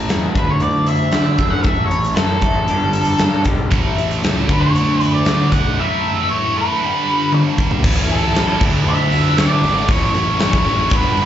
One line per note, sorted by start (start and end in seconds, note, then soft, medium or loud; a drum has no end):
0.00 0.34 A2 medium
0.00 0.35 E3 medium
0.00 0.36 A3 medium
0.00 0.11 E4 medium
0.08 0.33 E2 medium
0.08 0.33 A2 medium
0.08 0.34 E3 medium
0.08 0.35 G#3 medium
0.08 0.35 C#4 medium
0.08 0.34 E4 medium
0.08 snare loud
0.08 closed hi-hat medium
0.35 0.58 D2 medium
0.35 1.11 D3 medium
0.35 1.12 A3 medium
0.35 0.89 A3 medium
0.35 0.88 D4 medium
0.35 1.13 D4 loud
0.35 0.86 E4 medium
0.35 0.49 B4 medium
0.35 kick medium
0.35 closed hi-hat medium
0.39 1.11 D3 medium
0.50 0.62 C#5 medium
0.60 1.07 D2 medium
0.60 0.88 D5 medium
0.60 closed hi-hat medium
0.86 1.13 D4 medium
0.86 1.14 E4 medium
0.86 1.54 E5 medium
0.86 closed hi-hat medium
0.91 1.12 A3 soft
1.11 1.63 D3 medium
1.11 1.36 D3 medium
1.11 1.63 D3 medium
1.11 1.41 A3 medium
1.11 1.64 A3 medium
1.11 1.39 D4 medium
1.11 1.37 E4 medium
1.11 snare loud
1.11 closed hi-hat medium
1.17 1.66 D4 medium
1.38 1.66 F#2 medium
1.38 1.64 D4 medium
1.38 1.63 E4 medium
1.38 kick medium
1.38 closed hi-hat medium
1.42 1.65 A3 medium
1.50 1.65 F#5 medium
1.61 1.88 A1 medium
1.61 2.13 A2 medium
1.61 1.85 E5 loud
1.61 kick loud
1.61 closed hi-hat medium
1.65 2.41 A2 medium
1.65 2.15 E3 medium
1.65 2.42 E3 medium
1.65 2.15 A3 medium
1.65 2.42 A3 loud
1.65 2.16 C#4 medium
1.65 2.44 G#4 medium
1.86 2.15 C#5 medium
1.90 2.13 A1 medium
1.90 closed hi-hat medium
2.04 closed hi-hat medium
2.14 2.39 F#2 medium
2.14 2.66 A2 medium
2.14 2.67 E3 medium
2.14 2.67 A3 loud
2.14 2.67 C#4 medium
2.14 3.41 A4 medium
2.14 snare loud
2.14 closed hi-hat medium
2.41 2.65 A1 medium
2.41 2.68 E3 medium
2.41 2.67 A3 medium
2.41 kick medium
2.41 closed hi-hat medium
2.47 2.69 A2 medium
2.67 3.14 G1 medium
2.67 3.20 G2 medium
2.67 3.44 G2 medium
2.67 3.21 D3 medium
2.67 3.45 D3 medium
2.67 2.97 G3 loud
2.67 2.95 B3 loud
2.67 2.94 D4 loud
2.67 2.93 G4 loud
2.67 closed hi-hat medium
2.71 3.43 G3 medium
2.93 3.18 B3 medium
2.93 3.19 D4 medium
2.93 3.20 G4 medium
2.93 closed hi-hat medium
2.98 3.16 G3 medium
3.05 closed hi-hat medium
3.18 3.43 G2 medium
3.18 3.47 G3 medium
3.18 3.46 B3 medium
3.18 3.45 D4 medium
3.18 3.44 G4 medium
3.18 snare loud
3.18 closed hi-hat medium
3.44 3.72 B1 medium
3.44 3.72 G2 medium
3.44 3.71 D3 medium
3.44 3.70 G3 medium
3.44 3.71 G3 medium
3.44 3.71 B3 medium
3.44 3.71 D4 medium
3.44 3.70 G4 medium
3.44 kick medium
3.44 closed hi-hat medium
3.71 3.95 A1 medium
3.71 4.47 A2 medium
3.71 4.49 E3 medium
3.71 4.48 A3 loud
3.71 kick loud
3.71 closed hi-hat medium
3.98 4.21 A1 medium
3.98 closed hi-hat medium
4.11 closed hi-hat medium
4.23 4.49 C#2 medium
4.23 snare loud
4.23 closed hi-hat medium
4.47 4.72 D2 medium
4.47 5.24 D3 medium
4.47 5.25 A3 medium
4.47 4.64 B4 medium
4.47 kick loud
4.47 closed hi-hat medium
4.52 5.27 D4 medium
4.60 5.13 C#5 medium
4.75 5.21 D2 medium
4.75 closed hi-hat medium
5.01 closed hi-hat medium
5.13 5.50 D5 medium
5.25 5.76 D3 medium
5.25 5.50 D3 medium
5.25 5.77 A3 medium
5.25 5.78 D4 medium
5.25 snare loud
5.25 closed hi-hat medium
5.52 5.75 B1 medium
5.52 5.76 F#5 loud
5.52 kick medium
5.52 closed hi-hat medium
5.78 6.54 A2 medium
5.78 6.55 E3 medium
5.78 6.54 A3 loud
5.78 6.27 E5 loud
6.30 6.57 C#5 medium
6.55 6.82 A2 medium
6.55 6.81 E3 medium
6.55 6.80 A3 medium
6.55 7.30 B4 medium
6.81 7.57 G2 medium
6.81 7.58 D3 medium
6.81 7.57 G3 loud
7.32 high tom medium
7.58 7.83 G2 medium
7.58 7.84 D3 medium
7.58 7.83 G3 medium
7.58 kick medium
7.71 floor tom medium
7.83 8.07 A1 medium
7.83 8.35 A2 medium
7.83 8.34 E3 loud
7.83 8.12 A3 medium
7.83 8.10 C#4 loud
7.83 8.08 E4 loud
7.83 10.89 A4 medium
7.83 9.87 E5 medium
7.83 8.61 G#5 medium
7.83 8.60 C#6 medium
7.83 kick loud
7.83 crash loud
8.08 8.32 A1 medium
8.08 8.36 C#4 medium
8.08 8.38 E4 medium
8.08 8.58 A4 loud
8.08 open hi-hat medium
8.13 8.35 A3 medium
8.33 8.57 A1 medium
8.33 8.60 A2 medium
8.33 8.59 E3 medium
8.33 8.60 A3 medium
8.33 8.60 C#4 medium
8.33 snare loud
8.33 open hi-hat medium
8.39 8.59 E4 medium
8.61 8.84 D2 medium
8.61 8.85 D3 medium
8.61 8.86 A3 medium
8.61 8.87 D4 medium
8.61 8.88 E4 medium
8.61 9.89 D5 medium
8.61 9.88 D6 medium
8.61 kick loud
8.61 crash medium
8.86 9.09 D2 medium
8.86 9.13 D3 medium
8.86 9.13 A3 medium
8.86 9.12 D4 medium
8.86 9.10 E4 medium
8.86 9.36 E5 loud
9.11 9.35 D2 medium
9.11 9.36 D3 medium
9.11 9.37 A3 medium
9.11 9.38 D4 medium
9.11 9.40 E4 medium
9.11 open hi-hat medium
9.37 9.61 D2 medium
9.37 9.87 D3 medium
9.37 9.65 A3 medium
9.37 9.64 D4 medium
9.37 9.62 E4 medium
9.37 9.90 D5 medium
9.37 snare loud
9.37 open hi-hat medium
9.62 9.86 G#1 medium
9.62 9.88 D4 medium
9.62 9.87 E4 medium
9.62 open hi-hat medium
9.67 9.89 A3 medium
9.88 10.12 A1 medium
9.88 10.40 A2 medium
9.88 10.41 E3 medium
9.88 10.18 A3 loud
9.88 10.16 C#4 loud
9.88 10.37 C#5 loud
9.88 10.91 E5 medium
9.88 10.91 G#5 medium
9.88 10.91 C#6 medium
9.88 kick loud
9.88 open hi-hat medium
9.92 10.15 E4 loud
10.14 10.38 A1 medium
10.14 10.42 C#4 medium
10.14 10.43 E4 medium
10.14 snare soft
10.14 open hi-hat medium
10.19 10.41 A3 medium
10.39 10.63 A1 medium
10.39 10.89 A2 medium
10.39 10.68 E3 medium
10.39 10.68 A3 medium
10.39 10.94 C#5 medium
10.39 snare loud
10.39 open hi-hat medium
10.43 10.67 C#4 medium
10.43 10.66 E4 medium
10.53 kick medium
10.65 10.89 A1 medium
10.65 10.91 C#4 medium
10.65 10.91 E4 loud
10.65 open hi-hat medium
10.69 10.92 A2 medium
10.69 10.92 E3 medium
10.69 10.92 A3 medium
10.90 11.15 G1 medium
10.90 11.20 G2 medium
10.90 11.20 D3 medium
10.90 11.25 B4 medium
10.90 11.25 D5 medium
10.90 11.25 G5 medium
10.90 11.25 D6 medium
10.90 kick loud
10.90 open hi-hat medium
10.94 11.19 G3 loud
10.94 11.18 B3 loud
10.94 11.17 D4 loud
11.17 11.25 G1 medium
11.17 11.25 D3 medium
11.17 11.25 G3 medium
11.17 11.25 B3 medium
11.17 11.25 D4 medium
11.17 open hi-hat medium
11.22 11.25 G2 medium